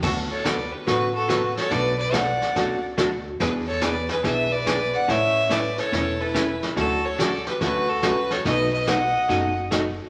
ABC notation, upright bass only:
X:1
M:4/4
L:1/8
Q:"Swing" 1/4=142
K:D
V:1 name="Upright bass" clef=bass
D,,4 A,,,4 | B,,,4 C,,2 D,,2 | E,,4 B,,,4 | A,,,4 E,,,4 |
D,,4 D,,2 C,,2 | B,,,4 F,,,4 |]